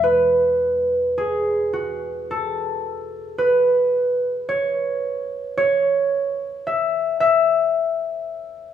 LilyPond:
\new Staff \with { instrumentName = "Harp" } { \time 4/4 \key e \major \tempo 4 = 54 b'4 gis'8 fis'8 a'4 b'4 | cis''4 cis''4 e''8 e''4 r8 | }